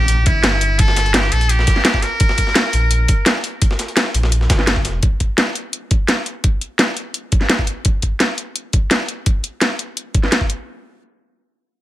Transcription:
Already playing: A#1 G4, impact
0.08 closed hi-hat
0.26 G1 E4, kick, closed hi-hat
0.44 snare, closed hi-hat
0.61 closed hi-hat
0.79 A4, kick, closed hi-hat
0.88 snare
0.96 snare, closed hi-hat
1.06 closed hi-hat
1.14 G4, snare, closed hi-hat
1.23 snare
1.32 A#1 A4, closed hi-hat
1.41 closed hi-hat
1.49 G4, closed hi-hat
1.59 snare
1.67 kick, snare, closed hi-hat
1.76 snare
1.85 snare, closed hi-hat
1.94 kick
2.02 A#4, snare, closed hi-hat
2.20 kick, closed hi-hat
2.29 snare
2.38 kick, closed hi-hat
2.47 snare
2.55 snare, closed hi-hat
2.73 A#1, closed hi-hat
2.91 closed hi-hat
3.08 kick, closed hi-hat
3.26 snare, closed hi-hat
3.44 closed hi-hat
3.62 kick, closed hi-hat
3.71 snare
3.79 snare, closed hi-hat
3.88 closed hi-hat
3.97 snare, closed hi-hat
4.06 snare
4.14 A#1, closed hi-hat
4.23 snare
4.32 closed hi-hat
4.41 snare
4.50 G1, kick, snare, closed hi-hat
4.59 snare
4.67 snare, closed hi-hat
4.76 kick
4.85 E1, snare, closed hi-hat
5.03 kick, closed hi-hat
5.20 kick, closed hi-hat
5.38 snare, closed hi-hat
5.55 closed hi-hat
5.73 closed hi-hat
5.91 kick, closed hi-hat
6.08 snare, closed hi-hat
6.26 closed hi-hat
6.44 kick, closed hi-hat
6.61 closed hi-hat
6.79 snare, closed hi-hat
6.97 closed hi-hat
7.14 closed hi-hat
7.32 kick, closed hi-hat
7.41 snare
7.50 snare, closed hi-hat
7.59 kick
7.67 closed hi-hat
7.85 kick, closed hi-hat
8.02 kick, closed hi-hat
8.20 snare, closed hi-hat
8.38 closed hi-hat
8.56 closed hi-hat
8.73 kick, closed hi-hat
8.91 snare, closed hi-hat
9.09 closed hi-hat
9.26 kick, closed hi-hat
9.44 closed hi-hat
9.61 snare, closed hi-hat
9.79 closed hi-hat
9.97 closed hi-hat
10.15 kick, closed hi-hat
10.23 snare
10.32 snare, closed hi-hat
10.41 kick
10.50 closed hi-hat

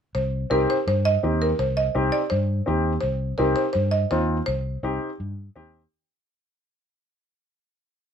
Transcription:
0.15 C2 C5
0.50 C2 C4 D#4 G4 A#4
0.70 C5
0.87 G2 C5
1.05 D#5
1.23 D#2 C4 D#4 G4
1.42 A#4
1.59 C2 C5
1.77 D#5
1.95 C2 C4 D#4 G4
2.12 D5
2.30 G2 C5
2.66 D#2 C4 D#4 G4
3.01 C2 C5
3.38 C2 C4 D#4 G4 A#4
3.56 C5
3.73 G2 C5
3.91 D#5
4.11 D#2 C4 D#4 F4 C5
4.46 C2 C5
4.83 C2 C4 D#4 G4
5.20 G2
5.56 D#2 C4 D#4 G4

